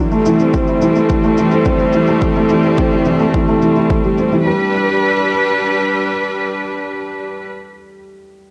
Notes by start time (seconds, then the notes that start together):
Already playing: E3 G3 A3 C4
0.11 A3, shaker
0.25 E3, shaker
0.39 C4, shaker
0.53 C4, kick, shaker
0.67 E4, shaker
0.82 E3, shaker
0.95 A3, shaker
1.09 E3, kick, shaker
1.23 A3, shaker
1.37 E3, shaker
1.51 C4, shaker
1.65 C4, kick, shaker
1.79 E4, shaker
1.93 E3, shaker
2.07 A3, shaker
2.21 E3, kick, shaker
2.35 A3, shaker
2.49 E3, shaker
2.63 C4, shaker
2.77 C4, kick, shaker
2.91 E4, shaker
3.05 E3, shaker
3.19 A3, shaker
3.34 E3, kick, shaker
3.48 A3, shaker
3.62 E3, shaker
3.76 E4, shaker
3.90 kick, shaker
4.04 G3, shaker
4.18 C4, shaker
4.32 E3, shaker
4.46 G3 D4 B4